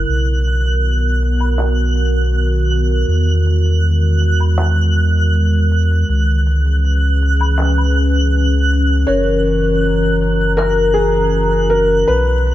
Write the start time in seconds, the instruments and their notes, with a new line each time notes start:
Already playing: ambient pad A#4, synth texture F#6
0.08 sub bass B1, ambient pad D#3 B3 F#4, shaker
0.47 shaker
0.65 shaker
0.84 shaker
1.23 shaker
1.40 low woodblock, shaker
1.59 clap, shaker
1.95 shaker
2.15 shaker
2.21 shaker
2.27 shaker
2.34 shaker
2.40 shaker
2.46 shaker
2.71 shaker
2.91 shaker
3.08 sub bass E2, ambient pad G#3, shaker
3.47 shaker
3.65 shaker
3.84 shaker
4.21 shaker
4.40 low woodblock, shaker
4.59 clap, shaker
4.96 shaker
5.16 shaker
5.35 shaker
5.72 shaker
5.91 shaker
6.08 sub bass C#2, ambient pad E3 C#4 G#4 B4, shaker
6.47 shaker
6.66 shaker
6.84 shaker
7.22 shaker
7.41 low woodblock, shaker
7.59 clap, shaker
7.78 low woodblock
7.97 shaker
8.16 shaker
8.35 shaker
8.73 shaker
8.91 shaker
9.07 sub bass F#1, ambient pad F#4 A#5, vibraphone A#4, felt piano C#5, shaker
9.47 shaker
9.66 shaker
9.84 shaker
10.22 shaker
10.41 shaker
10.57 felt piano A#4, vibraphone A#4, clap
10.94 felt piano G#4, vibraphone A#5, shaker
11.15 shaker
11.35 shaker
11.70 felt piano A#4
11.91 shaker
12.07 sub bass B1, ambient pad D#3 B3, felt piano B4, shaker
12.47 shaker